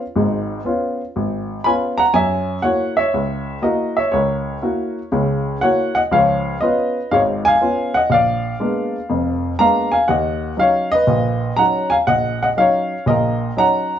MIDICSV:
0, 0, Header, 1, 2, 480
1, 0, Start_track
1, 0, Tempo, 496278
1, 149, Time_signature, 4, 2, 24, 8
1, 13534, End_track
2, 0, Start_track
2, 0, Title_t, "Grand piano"
2, 0, Program_c, 0, 0
2, 150, Note_on_c, 0, 32, 72
2, 155, Note_on_c, 0, 44, 66
2, 568, Note_off_c, 0, 32, 0
2, 570, Note_off_c, 0, 44, 0
2, 625, Note_on_c, 0, 59, 58
2, 635, Note_on_c, 0, 61, 52
2, 638, Note_on_c, 0, 65, 61
2, 969, Note_off_c, 0, 59, 0
2, 974, Note_off_c, 0, 61, 0
2, 975, Note_off_c, 0, 65, 0
2, 1120, Note_on_c, 0, 32, 72
2, 1534, Note_off_c, 0, 32, 0
2, 1589, Note_on_c, 0, 83, 96
2, 1598, Note_on_c, 0, 59, 54
2, 1602, Note_on_c, 0, 61, 51
2, 1605, Note_on_c, 0, 65, 63
2, 1608, Note_on_c, 0, 80, 82
2, 1663, Note_off_c, 0, 83, 0
2, 1679, Note_off_c, 0, 80, 0
2, 1911, Note_on_c, 0, 82, 99
2, 1929, Note_on_c, 0, 78, 78
2, 1936, Note_off_c, 0, 59, 0
2, 1938, Note_off_c, 0, 61, 0
2, 1940, Note_off_c, 0, 65, 0
2, 2067, Note_off_c, 0, 78, 0
2, 2067, Note_on_c, 0, 42, 70
2, 2068, Note_on_c, 0, 80, 102
2, 2073, Note_off_c, 0, 82, 0
2, 2087, Note_on_c, 0, 76, 75
2, 2488, Note_off_c, 0, 42, 0
2, 2527, Note_off_c, 0, 76, 0
2, 2538, Note_on_c, 0, 78, 90
2, 2543, Note_on_c, 0, 58, 56
2, 2553, Note_on_c, 0, 64, 51
2, 2556, Note_on_c, 0, 66, 63
2, 2558, Note_on_c, 0, 73, 70
2, 2565, Note_off_c, 0, 80, 0
2, 2848, Note_off_c, 0, 78, 0
2, 2858, Note_off_c, 0, 73, 0
2, 2870, Note_on_c, 0, 76, 92
2, 2888, Note_on_c, 0, 73, 74
2, 2889, Note_off_c, 0, 58, 0
2, 2894, Note_off_c, 0, 64, 0
2, 2895, Note_off_c, 0, 66, 0
2, 3035, Note_on_c, 0, 37, 66
2, 3452, Note_off_c, 0, 37, 0
2, 3471, Note_off_c, 0, 76, 0
2, 3479, Note_off_c, 0, 73, 0
2, 3500, Note_on_c, 0, 58, 61
2, 3505, Note_on_c, 0, 64, 52
2, 3508, Note_on_c, 0, 75, 82
2, 3510, Note_on_c, 0, 66, 65
2, 3519, Note_on_c, 0, 70, 65
2, 3819, Note_off_c, 0, 70, 0
2, 3836, Note_on_c, 0, 76, 83
2, 3847, Note_off_c, 0, 75, 0
2, 3848, Note_off_c, 0, 58, 0
2, 3851, Note_off_c, 0, 64, 0
2, 3852, Note_on_c, 0, 73, 67
2, 3853, Note_off_c, 0, 66, 0
2, 3967, Note_off_c, 0, 73, 0
2, 3981, Note_on_c, 0, 73, 73
2, 3993, Note_on_c, 0, 70, 59
2, 3997, Note_off_c, 0, 76, 0
2, 3997, Note_on_c, 0, 37, 69
2, 4413, Note_off_c, 0, 37, 0
2, 4472, Note_on_c, 0, 58, 55
2, 4475, Note_on_c, 0, 64, 50
2, 4479, Note_on_c, 0, 66, 63
2, 4814, Note_off_c, 0, 58, 0
2, 4816, Note_off_c, 0, 64, 0
2, 4818, Note_off_c, 0, 66, 0
2, 4910, Note_off_c, 0, 73, 0
2, 4916, Note_off_c, 0, 70, 0
2, 4951, Note_on_c, 0, 49, 74
2, 4952, Note_on_c, 0, 37, 71
2, 5371, Note_off_c, 0, 37, 0
2, 5371, Note_off_c, 0, 49, 0
2, 5429, Note_on_c, 0, 78, 94
2, 5444, Note_on_c, 0, 64, 52
2, 5445, Note_on_c, 0, 73, 78
2, 5446, Note_on_c, 0, 58, 57
2, 5455, Note_on_c, 0, 66, 68
2, 5739, Note_off_c, 0, 78, 0
2, 5743, Note_off_c, 0, 73, 0
2, 5753, Note_on_c, 0, 78, 95
2, 5771, Note_on_c, 0, 75, 69
2, 5781, Note_off_c, 0, 58, 0
2, 5781, Note_off_c, 0, 64, 0
2, 5786, Note_off_c, 0, 66, 0
2, 5802, Note_off_c, 0, 78, 0
2, 5819, Note_off_c, 0, 75, 0
2, 5913, Note_on_c, 0, 37, 74
2, 5916, Note_on_c, 0, 53, 73
2, 5924, Note_on_c, 0, 77, 100
2, 5945, Note_on_c, 0, 73, 72
2, 6332, Note_off_c, 0, 37, 0
2, 6333, Note_off_c, 0, 53, 0
2, 6366, Note_off_c, 0, 77, 0
2, 6378, Note_off_c, 0, 73, 0
2, 6389, Note_on_c, 0, 75, 89
2, 6401, Note_on_c, 0, 59, 57
2, 6403, Note_on_c, 0, 61, 50
2, 6406, Note_on_c, 0, 65, 62
2, 6411, Note_on_c, 0, 71, 71
2, 6739, Note_off_c, 0, 59, 0
2, 6740, Note_off_c, 0, 61, 0
2, 6742, Note_off_c, 0, 65, 0
2, 6850, Note_off_c, 0, 71, 0
2, 6881, Note_on_c, 0, 77, 95
2, 6882, Note_on_c, 0, 44, 70
2, 6885, Note_on_c, 0, 32, 74
2, 6887, Note_off_c, 0, 75, 0
2, 6905, Note_on_c, 0, 73, 72
2, 6953, Note_off_c, 0, 77, 0
2, 6975, Note_off_c, 0, 73, 0
2, 7205, Note_on_c, 0, 80, 119
2, 7232, Note_on_c, 0, 77, 83
2, 7297, Note_off_c, 0, 44, 0
2, 7298, Note_off_c, 0, 32, 0
2, 7362, Note_on_c, 0, 59, 56
2, 7362, Note_on_c, 0, 61, 56
2, 7366, Note_on_c, 0, 65, 62
2, 7664, Note_off_c, 0, 77, 0
2, 7683, Note_on_c, 0, 78, 95
2, 7697, Note_off_c, 0, 80, 0
2, 7699, Note_off_c, 0, 59, 0
2, 7700, Note_off_c, 0, 61, 0
2, 7701, Note_off_c, 0, 65, 0
2, 7706, Note_on_c, 0, 75, 77
2, 7832, Note_on_c, 0, 34, 66
2, 7838, Note_off_c, 0, 75, 0
2, 7841, Note_off_c, 0, 78, 0
2, 7851, Note_on_c, 0, 77, 101
2, 7872, Note_on_c, 0, 74, 77
2, 8251, Note_off_c, 0, 34, 0
2, 8317, Note_on_c, 0, 56, 54
2, 8319, Note_on_c, 0, 58, 51
2, 8323, Note_on_c, 0, 62, 60
2, 8325, Note_on_c, 0, 59, 51
2, 8657, Note_off_c, 0, 56, 0
2, 8658, Note_off_c, 0, 58, 0
2, 8660, Note_off_c, 0, 62, 0
2, 8661, Note_off_c, 0, 59, 0
2, 8794, Note_on_c, 0, 41, 68
2, 8796, Note_on_c, 0, 29, 70
2, 9212, Note_off_c, 0, 29, 0
2, 9212, Note_off_c, 0, 41, 0
2, 9254, Note_off_c, 0, 74, 0
2, 9275, Note_on_c, 0, 58, 50
2, 9275, Note_on_c, 0, 82, 103
2, 9276, Note_on_c, 0, 56, 54
2, 9277, Note_on_c, 0, 59, 52
2, 9279, Note_off_c, 0, 77, 0
2, 9283, Note_on_c, 0, 62, 64
2, 9294, Note_on_c, 0, 77, 77
2, 9577, Note_off_c, 0, 82, 0
2, 9587, Note_off_c, 0, 77, 0
2, 9590, Note_on_c, 0, 80, 97
2, 9608, Note_on_c, 0, 77, 75
2, 9616, Note_off_c, 0, 56, 0
2, 9616, Note_off_c, 0, 58, 0
2, 9616, Note_off_c, 0, 59, 0
2, 9619, Note_off_c, 0, 62, 0
2, 9748, Note_off_c, 0, 77, 0
2, 9748, Note_on_c, 0, 78, 92
2, 9754, Note_off_c, 0, 80, 0
2, 9754, Note_on_c, 0, 39, 67
2, 9773, Note_on_c, 0, 75, 76
2, 10172, Note_off_c, 0, 39, 0
2, 10197, Note_off_c, 0, 78, 0
2, 10210, Note_off_c, 0, 75, 0
2, 10221, Note_on_c, 0, 54, 56
2, 10224, Note_on_c, 0, 61, 51
2, 10234, Note_on_c, 0, 63, 59
2, 10247, Note_on_c, 0, 77, 97
2, 10262, Note_on_c, 0, 73, 77
2, 10544, Note_off_c, 0, 77, 0
2, 10551, Note_off_c, 0, 73, 0
2, 10558, Note_on_c, 0, 75, 111
2, 10568, Note_off_c, 0, 54, 0
2, 10570, Note_off_c, 0, 61, 0
2, 10574, Note_off_c, 0, 63, 0
2, 10585, Note_on_c, 0, 71, 80
2, 10708, Note_on_c, 0, 46, 71
2, 10710, Note_on_c, 0, 34, 70
2, 11128, Note_off_c, 0, 46, 0
2, 11129, Note_off_c, 0, 34, 0
2, 11167, Note_off_c, 0, 71, 0
2, 11186, Note_on_c, 0, 82, 103
2, 11192, Note_on_c, 0, 54, 61
2, 11199, Note_on_c, 0, 61, 52
2, 11204, Note_on_c, 0, 63, 66
2, 11209, Note_on_c, 0, 78, 80
2, 11211, Note_off_c, 0, 75, 0
2, 11504, Note_off_c, 0, 78, 0
2, 11508, Note_on_c, 0, 80, 98
2, 11524, Note_off_c, 0, 82, 0
2, 11527, Note_on_c, 0, 77, 80
2, 11533, Note_off_c, 0, 54, 0
2, 11537, Note_off_c, 0, 61, 0
2, 11539, Note_off_c, 0, 63, 0
2, 11557, Note_off_c, 0, 80, 0
2, 11575, Note_off_c, 0, 77, 0
2, 11675, Note_on_c, 0, 78, 103
2, 11679, Note_on_c, 0, 34, 72
2, 11691, Note_on_c, 0, 75, 75
2, 11976, Note_off_c, 0, 78, 0
2, 11985, Note_off_c, 0, 75, 0
2, 12018, Note_on_c, 0, 78, 94
2, 12031, Note_on_c, 0, 75, 71
2, 12066, Note_off_c, 0, 78, 0
2, 12080, Note_off_c, 0, 75, 0
2, 12093, Note_off_c, 0, 34, 0
2, 12158, Note_on_c, 0, 54, 58
2, 12161, Note_on_c, 0, 61, 52
2, 12166, Note_on_c, 0, 77, 96
2, 12167, Note_on_c, 0, 63, 66
2, 12189, Note_on_c, 0, 73, 74
2, 12496, Note_off_c, 0, 54, 0
2, 12498, Note_off_c, 0, 61, 0
2, 12501, Note_off_c, 0, 63, 0
2, 12618, Note_off_c, 0, 73, 0
2, 12635, Note_on_c, 0, 34, 72
2, 12638, Note_on_c, 0, 46, 72
2, 12647, Note_on_c, 0, 75, 94
2, 12653, Note_off_c, 0, 77, 0
2, 12666, Note_on_c, 0, 70, 72
2, 13051, Note_off_c, 0, 34, 0
2, 13053, Note_off_c, 0, 46, 0
2, 13086, Note_off_c, 0, 75, 0
2, 13096, Note_off_c, 0, 70, 0
2, 13122, Note_on_c, 0, 54, 62
2, 13124, Note_on_c, 0, 61, 53
2, 13126, Note_on_c, 0, 63, 66
2, 13139, Note_on_c, 0, 82, 101
2, 13150, Note_on_c, 0, 78, 76
2, 13458, Note_off_c, 0, 54, 0
2, 13459, Note_off_c, 0, 61, 0
2, 13460, Note_off_c, 0, 63, 0
2, 13534, Note_off_c, 0, 78, 0
2, 13534, Note_off_c, 0, 82, 0
2, 13534, End_track
0, 0, End_of_file